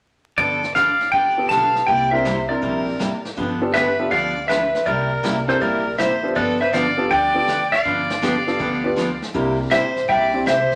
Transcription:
0.38 G1 D3 F3 B3 D4 G4 A4 D5, brush sweep, kick
0.63 snare
0.75 G1 D3 F3 B3 D4 G4 D5 F5, snare, hi-hat pedal
1.01 snare
1.12 A1 D3 F3 B3 D4 G4 D5 G5, brush sweep, kick
1.38 B3 F4 G4 A4
1.49 B1 D3 F3 B3 D4 G4 F5 A5, snare, hi-hat pedal
1.75 snare
1.87 C2 C3 G3 A#3 E4 G4 D5 G5, brush sweep, kick
2.11 C4 D4 E4 A#4 C5 E5
2.25 C3 G3 A#3 E4 G4, snare, hi-hat pedal
2.49 C4 D4 E4 A#4 D5
2.62 A#1 C3 G3 A#3 E4 G4, brush sweep, kick
2.99 A1 C3 G3 A#3 E4 G4, snare, hi-hat pedal
3.25 snare
3.37 G1 D3 F3 B3 D4 G4, brush sweep, kick
3.61 B3 D4 F4 G4 A4
3.74 D3 F3 B3 D4 G4 B4 E5, snare, hi-hat pedal
3.99 B3 D4 F4 G4 A4
4.11 D2 D3 F3 B3 D4 G4 D5 F5, brush sweep, kick
4.48 D3 F3 B3 D4 G4 B4 E5, snare, hi-hat pedal
4.75 snare
4.86 C2 C3 G3 A#3 E4 G4 A#4 D5, brush sweep, kick
5.23 C2 C3 G3 A#3 E4 G4, snare, hi-hat pedal
5.48 C4 D4 E4 G4 A4 A#4 C5, snare
5.61 A#1 C3 G3 A#3 E4 G4 A#4 D5, brush sweep, kick
5.98 A1 C3 G3 A#3 E4 G4 C5 E5, snare, hi-hat pedal
6.23 B3 D4 F4 G4 A4
6.35 G1 D3 F3 B3 D4 G4 A4 B4 D5, brush sweep, kick
6.60 B4 C5 E5
6.73 D3 F3 B3 D4 G4 D5 F5, snare, hi-hat pedal
6.98 B3 D4 F4 G4 A4
7.10 D2 D3 F3 B3 D4 G4 D5 G5, brush sweep, kick
7.34 B3 D4 F4 G4 A4
7.48 D3 F3 B3 D4 G4, snare, hi-hat pedal
7.72 D5 F5, snare
7.84 G1 D3 F3 B3 D4 G4, brush sweep, kick
8.10 snare
8.22 D3 F3 B3 D4 G4, snare, hi-hat pedal
8.47 B3 D4 F4 G4 A4, snare
8.59 D2 D3 F3 B3 D4 G4, brush sweep, kick
8.84 B3 D4 F4 G4 B4
8.96 D3 F3 B3 D4 G4, snare, hi-hat pedal
9.22 snare
9.34 C2 C3 G3 A#3 C4 D4 E4 G4 A#4, brush sweep, kick
9.71 A1 C3 G3 A#3 E4 G4 C5 E5, snare, hi-hat pedal
9.96 snare
10.08 A#1 C3 G3 A#3 E4 G4 D5 E5 G5, brush sweep, kick
10.33 C4 D4 E4 G4 C5
10.46 C2 C3 G3 A#3 E4 G4 C5 E5, snare, hi-hat pedal
10.71 snare

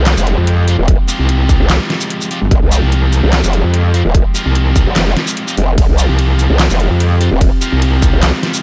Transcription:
Already playing: C2 F3 G#3 C4 F4 G4, sub drop
0.06 snare, clap, closed hi-hat
0.17 F1, shaker
0.27 closed hi-hat
0.38 F2
0.47 closed hi-hat
0.67 G#3 F4 G4, open hi-hat
0.78 D#1
0.88 kick, closed hi-hat
1.08 G#3 F4 G4, closed hi-hat, shaker
1.19 C2
1.29 closed hi-hat
1.49 kick, open hi-hat, shaker
1.60 C2
1.70 snare, clap, closed hi-hat
1.90 snare, closed hi-hat
2.01 shaker
2.10 closed hi-hat
2.21 shaker
2.31 G#3 F4 G4, open hi-hat
2.42 G1
2.51 F1, kick, closed hi-hat
2.62 C2
2.71 G#3 F4 G4, closed hi-hat, shaker
2.82 C2
2.92 closed hi-hat
3.13 open hi-hat, shaker
3.23 C2
3.33 snare, clap, closed hi-hat
3.44 F1, shaker
3.53 closed hi-hat
3.64 F2
3.74 closed hi-hat
3.94 G#3 F4 G4, open hi-hat
4.05 D#1
4.15 kick, closed hi-hat
4.35 G#3 F4 G4, closed hi-hat, shaker
4.46 C2
4.55 closed hi-hat
4.76 kick, open hi-hat, shaker
4.86 F1
4.96 snare, clap, closed hi-hat
5.17 snare, closed hi-hat
5.27 shaker
5.37 closed hi-hat
5.47 G#3 F4 G4, shaker
5.57 F1, open hi-hat
5.78 F1 C5, kick, closed hi-hat, ride
5.89 C2
5.98 G#3 F4 G4, closed hi-hat, shaker
6.09 C2
6.19 closed hi-hat, ride
6.39 open hi-hat, shaker
6.50 C2
6.59 snare, clap, closed hi-hat, ride
6.70 F1, shaker
6.80 closed hi-hat
6.91 F2
7.00 closed hi-hat, ride
7.20 G#3 F4 G4, open hi-hat
7.31 D#1
7.41 kick, closed hi-hat, ride
7.61 G#3 F4 G4, closed hi-hat, shaker
7.72 C2
7.82 closed hi-hat, ride
8.02 kick, open hi-hat, shaker
8.13 C2
8.23 snare, clap, closed hi-hat, ride
8.43 snare, closed hi-hat
8.54 shaker

